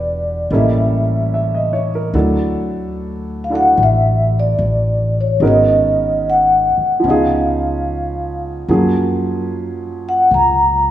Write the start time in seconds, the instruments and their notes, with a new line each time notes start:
Already playing: upright bass E1, upright piano B3 D4 E4 F#4 G4, vibraphone D5
0.51 upright bass A1, upright piano G3 A#3 C#4 E4 A4, vibraphone D#5 E5
1.34 upright piano E5
1.54 upright piano D#5
1.73 upright piano C#5
1.95 upright piano A#4
2.14 upright bass D2, upright piano F#3 A3 D4 E4 A4
3.44 vibraphone F5
3.50 upright piano D4 E4 F#4 A4
3.55 vibraphone F#5
3.77 upright bass A1
3.83 vibraphone E5
4.40 vibraphone D5
4.59 upright bass A1
5.21 vibraphone C#5
5.40 upright bass G#1, upright piano G#3 B3 C#4 F#4 A#4
5.47 vibraphone D#5
6.30 vibraphone F#5
6.77 muted upright bass stroke
7.00 upright piano F3 B3
7.04 upright bass C#2, upright piano C#4 D#4
7.10 upright piano G#4, vibraphone F5
8.68 upright bass F#2, upright piano F3 F#3 A#3 C#4 G#4
10.09 vibraphone F#5
10.31 upright bass C#2, vibraphone A#5